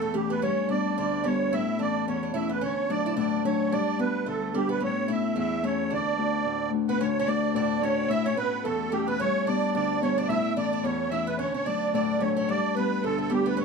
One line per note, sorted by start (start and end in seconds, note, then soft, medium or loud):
0.00 0.48 E2 medium
0.00 0.13 E3 soft
0.00 0.14 A3 soft
0.00 0.15 A3 medium
0.00 0.14 C#4 medium
0.00 0.14 A4 medium
0.14 0.48 E3 soft
0.14 0.31 G3 medium
0.14 1.80 A3 soft
0.14 0.76 C#4 soft
0.14 0.32 G4 medium
0.30 0.42 B3 medium
0.30 0.44 B4 medium
0.42 1.03 G2 medium
0.42 0.71 C#4 medium
0.42 0.68 C#5 medium
0.69 1.24 G3 soft
0.69 1.25 B3 soft
0.69 0.95 D4 medium
0.69 1.25 D4 soft
0.69 0.97 D5 medium
0.98 1.57 D2 medium
0.98 1.23 D4 medium
0.98 1.26 D5 medium
1.24 1.57 G3 soft
1.24 3.98 B3 soft
1.24 1.53 C#4 medium
1.24 1.87 D4 medium
1.24 1.54 C#5 medium
1.53 2.12 A2 medium
1.53 1.78 E4 medium
1.53 1.81 E5 medium
1.79 2.33 E3 soft
1.79 2.35 A3 soft
1.79 2.35 C#4 soft
1.79 2.05 D4 medium
1.79 2.06 D5 loud
2.07 2.67 E2 medium
2.07 2.24 C#4 medium
2.07 2.36 C#5 medium
2.23 2.34 D4 medium
2.34 2.67 E3 soft
2.34 2.90 A3 soft
2.34 2.69 C#4 soft
2.34 2.49 E4 medium
2.34 2.51 E5 medium
2.49 2.61 B3 medium
2.49 2.63 B4 medium
2.61 3.77 D2 medium
2.61 2.87 C#4 medium
2.61 2.91 C#5 medium
2.89 3.43 F#3 soft
2.89 3.44 A3 soft
2.89 3.45 D4 soft
2.89 3.06 D4 medium
2.89 3.18 D5 loud
3.06 3.16 E4 medium
3.17 3.77 A2 medium
3.17 3.45 D4 medium
3.17 3.44 D5 medium
3.44 3.77 F#3 soft
3.44 5.08 A3 soft
3.44 3.73 C#4 medium
3.44 3.98 D4 soft
3.44 3.73 C#5 medium
3.72 4.31 G2 medium
3.72 3.98 D4 medium
3.72 4.00 D5 medium
3.98 4.52 G3 soft
3.98 4.54 B3 soft
3.98 4.25 B3 medium
3.98 4.54 D4 soft
3.98 4.28 B4 medium
4.26 4.86 D2 medium
4.26 4.52 A3 medium
4.26 4.56 A4 medium
4.53 4.86 G3 soft
4.53 4.69 G3 medium
4.53 7.65 B3 soft
4.53 5.15 D4 medium
4.53 4.70 G4 medium
4.69 4.80 B3 medium
4.69 4.83 B4 medium
4.80 5.41 A2 medium
4.80 5.06 C#4 medium
4.80 5.11 C#5 medium
5.08 5.62 A3 soft
5.08 5.64 C#4 soft
5.08 5.34 E4 medium
5.08 5.64 E4 soft
5.08 5.37 E5 medium
5.36 5.96 E2 medium
5.36 5.61 E4 medium
5.36 5.66 E5 loud
5.63 6.17 A3 soft
5.63 5.89 C#4 medium
5.63 5.97 C#4 soft
5.63 8.25 E4 soft
5.63 5.93 C#5 medium
5.90 7.00 D2 medium
5.90 6.69 D4 medium
5.90 6.71 D5 loud
6.18 6.72 A3 soft
6.18 6.72 D4 soft
6.18 6.73 F#4 soft
6.46 7.06 A2 medium
6.72 7.27 A3 soft
6.72 7.28 D4 soft
6.72 7.28 F#4 soft
6.88 7.00 B3 medium
6.88 7.00 B4 medium
6.88 7.01 B4 medium
7.01 8.15 D2 medium
7.01 7.09 C#4 medium
7.01 7.09 C#5 medium
7.01 7.07 C#5 loud
7.08 7.18 C#5 medium
7.17 7.28 C#4 medium
7.17 7.28 C#5 medium
7.17 7.29 C#5 loud
7.26 7.80 A3 soft
7.26 7.81 D4 soft
7.26 7.55 D4 medium
7.26 7.83 F#4 medium
7.26 7.53 D5 medium
7.26 7.54 D5 loud
7.54 8.08 A2 medium
7.54 7.81 D4 medium
7.54 7.83 D5 medium
7.54 7.84 D5 medium
7.80 8.36 A3 soft
7.80 8.11 C#4 medium
7.80 8.43 D4 soft
7.80 9.26 F#4 soft
7.80 7.98 C#5 medium
7.80 8.11 C#5 medium
7.96 8.10 D5 medium
8.09 8.70 A2 medium
8.09 8.25 E4 medium
8.09 8.26 E5 medium
8.09 8.26 E5 loud
8.25 8.37 C#4 medium
8.25 8.38 C#5 medium
8.25 8.37 C#5 loud
8.37 8.91 A3 soft
8.37 8.65 B3 medium
8.37 8.92 C#4 soft
8.37 8.93 E4 soft
8.37 8.66 B4 medium
8.37 8.66 B4 loud
8.64 9.25 E2 medium
8.64 8.93 A3 medium
8.64 8.93 A4 medium
8.92 9.07 G3 medium
8.92 10.56 A3 soft
8.92 9.54 C#4 soft
8.92 11.54 E4 soft
8.92 9.08 G4 medium
8.92 9.07 G4 loud
9.07 9.19 B3 medium
9.07 9.20 B4 medium
9.07 9.22 B4 medium
9.20 9.80 G2 medium
9.20 9.45 C#4 medium
9.20 9.48 C#5 loud
9.20 9.47 C#5 medium
9.47 10.00 G3 soft
9.47 10.01 B3 soft
9.47 9.73 D4 medium
9.47 10.02 D4 soft
9.47 9.74 D5 medium
9.47 9.73 D5 medium
9.75 10.34 D2 medium
9.75 10.00 D4 medium
9.75 10.00 D5 loud
9.75 10.04 D5 medium
10.01 10.34 G3 soft
10.01 12.76 B3 soft
10.01 10.17 C#4 medium
10.01 10.63 D4 soft
10.01 10.20 C#5 medium
10.01 10.19 C#5 loud
10.17 10.29 D4 medium
10.17 10.29 D5 medium
10.28 10.89 A2 medium
10.28 10.56 E4 medium
10.28 10.54 E5 loud
10.28 10.59 E5 medium
10.56 11.09 E3 soft
10.56 11.10 A3 soft
10.56 11.11 C#4 soft
10.56 10.72 D4 medium
10.56 10.85 D5 medium
10.56 10.86 D5 medium
10.73 10.84 D4 medium
10.83 11.44 E2 medium
10.83 11.13 C#4 medium
10.83 11.12 C#5 medium
10.83 11.10 C#5 medium
11.11 11.44 E3 soft
11.11 11.67 A3 soft
11.11 11.45 C#4 medium
11.11 11.26 E4 medium
11.11 11.39 E5 medium
11.11 11.27 E5 loud
11.27 11.38 B3 medium
11.27 11.39 B4 medium
11.38 12.54 D2 medium
11.38 11.53 C#4 medium
11.38 11.53 C#5 medium
11.38 11.54 C#5 medium
11.54 11.66 C#4 medium
11.54 11.67 C#5 medium
11.65 12.18 F#3 soft
11.65 12.21 A3 soft
11.65 11.94 D4 medium
11.65 12.24 D4 soft
11.65 11.93 D5 medium
11.94 12.54 A2 medium
11.94 12.20 D4 medium
11.94 12.23 D5 medium
11.94 12.22 D5 medium
12.19 12.54 F#3 soft
12.19 13.65 A3 soft
12.19 12.36 C#4 medium
12.19 12.37 C#5 medium
12.19 12.36 C#5 medium
12.24 12.77 D4 soft
12.37 12.49 C#4 medium
12.37 12.50 C#5 medium
12.48 13.09 G2 medium
12.48 12.74 D4 medium
12.48 12.77 D5 medium
12.48 12.75 D5 loud
12.75 13.29 G3 soft
12.75 13.02 B3 medium
12.75 13.30 B3 soft
12.75 13.31 D4 soft
12.75 13.05 B4 medium
13.04 13.64 D2 medium
13.04 13.17 A3 medium
13.04 13.32 A4 medium
13.04 13.20 A4 medium
13.19 13.31 A3 medium
13.19 13.32 A4 medium
13.30 13.45 G3 medium
13.30 13.64 G3 soft
13.30 13.65 B3 soft
13.30 13.65 D4 soft
13.30 13.48 G4 medium
13.46 13.57 B3 medium
13.46 13.58 B4 medium
13.46 13.60 B4 medium
13.57 13.65 A2 medium
13.57 13.65 C#4 medium
13.57 13.65 C#5 medium
13.61 13.65 C#5 medium